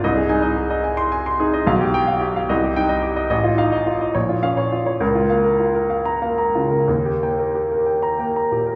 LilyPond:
<<
  \new Staff \with { instrumentName = "Grand piano" } { \time 6/8 \key aes \major \tempo 4. = 71 << { r4. r16 c'''8 r8. | r8 g''8 r4 g''8 r8 | r8 f''8 r4 f''8 r8 | r4. r16 bes''8 r8. |
r4. r16 bes''8 r8. | } \\ { ees''16 aes'16 aes''16 ees''16 aes'16 ees''16 aes''8 aes''16 c'''16 aes'16 ees''16 | f''16 g'8 f''16 g'16 f''16 ees''16 g'8 ees''16 g'16 ees''16 | ees''16 f'8 ees''16 f'16 ees''16 des''16 f'8 des''16 f'16 des''16 | bes'16 f'16 f''16 bes'16 f'16 bes'16 f''8 f''16 bes''16 f'16 bes'16 |
bes'16 g'16 g''16 bes'16 g'16 bes'16 g''8 g''16 bes''16 g'16 bes'16 | } >> }
  \new Staff \with { instrumentName = "Grand piano" } { \clef bass \time 6/8 \key aes \major c,8 ees'4 r4 ees'8 | b,,4. c,8 ees'4 | a,,8 ees'4 bes,,8 des'4 | des,8 bes4 r8 bes8 des8 |
ees,8 bes4 r8 bes8 bes,8 | }
>>